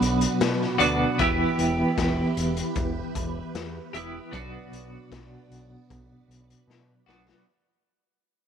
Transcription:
Already playing: B2 F#3 B3 D4 F#4 B4 D5 B5
0.01 B1, closed hi-hat
0.21 closed hi-hat
0.41 B2, snare, closed hi-hat
0.62 snare
0.78 D2 B2 F#3 B3 D4 F#4, closed hi-hat
1.18 E1 E3 B3 E4 G4 B4 E5, kick, closed hi-hat
1.58 E1, closed hi-hat
1.97 E1, kick, snare, closed hi-hat
2.37 E1, closed hi-hat
2.57 closed hi-hat
2.75 E1, kick, closed hi-hat
3.15 E1, kick, closed hi-hat
3.54 E2, snare, closed hi-hat
3.93 E1 E3 B3 E4 G4, closed hi-hat
4.31 B1 B2 F#3 B3 D4 F#4 D5, kick, closed hi-hat
4.72 B1, closed hi-hat
5.12 B1, kick, snare, closed hi-hat
5.51 B1, closed hi-hat
5.90 B1, kick, closed hi-hat
6.28 B1, closed hi-hat
6.50 closed hi-hat
6.68 B2, snare
7.06 B1 B2 F#3 B3 D4 F#4, snare
7.29 snare

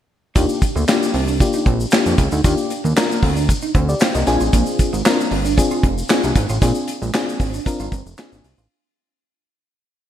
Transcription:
0.35 D#2 A#3 D4 D#4 F4 G4, kick, closed hi-hat, shaker
0.49 shaker
0.62 muted clean electric guitar stroke, kick, closed hi-hat, shaker
0.76 D2 A#3, shaker
0.88 A#3 D4 F4 G4, snare, clap, closed hi-hat, shaker
1.03 shaker
1.14 C2 C4, open hi-hat
1.28 D4, shaker
1.40 A#3 D4 F4 G4, muted clean electric guitar stroke, kick, closed hi-hat, shaker
1.53 D#4, shaker
1.66 A#1 C4, kick, closed hi-hat
1.80 shaker
1.91 A#3 D4 F4 G4, snare, clap, closed hi-hat, shaker
2.06 F2, muted clean electric guitar stroke, shaker
2.18 C#2, kick, closed hi-hat, shaker
2.32 D2 D#4, shaker
2.44 D#2 A#3 D4 D#4 F4 G4, kick, closed hi-hat, shaker
2.58 shaker
2.70 muted clean electric guitar stroke, closed hi-hat, shaker
2.84 D#2 A#3, shaker
2.96 A#3 D4 F4 A#4, snare, clap, closed hi-hat, shaker
3.12 shaker
3.23 D2 C4, kick, open hi-hat
3.36 D4, shaker
3.49 muted clean electric guitar stroke, kick, closed hi-hat, shaker
3.62 D#4, shaker
3.75 D2 C4, kick, closed hi-hat
3.89 G4 D5, shaker
4.00 D4 C5 F5 G5, snare, clap, closed hi-hat, shaker
4.15 C2 A#4 D#5, muted clean electric guitar stroke, shaker
4.27 A#1 C4 D4 F4 G#4 G#5, closed hi-hat, shaker
4.40 A1 F4, shaker
4.53 A#1 A#3, kick, closed hi-hat, shaker
4.66 shaker
4.79 muted clean electric guitar stroke, kick, closed hi-hat, shaker
4.93 G#1 G#3, shaker
5.05 C4 D4 F4 A#4, snare, clap, closed hi-hat, shaker
5.20 shaker
5.31 G1 C4, open hi-hat
5.45 D4, shaker
5.57 C4 D4 F4 G#4, muted clean electric guitar stroke, kick, closed hi-hat, shaker
5.71 F4, shaker
5.83 F1 C4, kick, closed hi-hat
5.98 shaker
6.09 C4 D4 F4 G#4, snare, clap, closed hi-hat, shaker
6.23 C2, muted clean electric guitar stroke, shaker
6.35 G#1, kick, closed hi-hat, shaker
6.49 A1 F4, shaker
6.62 A#1 A#3 C4 D4 F4 G#4, kick, closed hi-hat, shaker
6.75 shaker
6.88 muted clean electric guitar stroke, closed hi-hat, shaker
7.02 A#1 G#3, shaker
7.14 C4 D4 F4 G#4, snare, clap, closed hi-hat, shaker
7.29 shaker
7.40 G#1 C4, kick, open hi-hat, shaker
7.54 D4, shaker
7.66 C4 D4 F4 A#4, muted clean electric guitar stroke, kick, closed hi-hat, shaker
7.80 G#1 F4, shaker
7.92 G1 C4, kick, closed hi-hat, shaker
8.06 F1, shaker
8.17 C4 D4 F4 G#4, snare, clap, closed hi-hat, shaker
8.32 G#1, muted clean electric guitar stroke, shaker
8.44 C2, open hi-hat, shaker
8.58 A1 F4, shaker

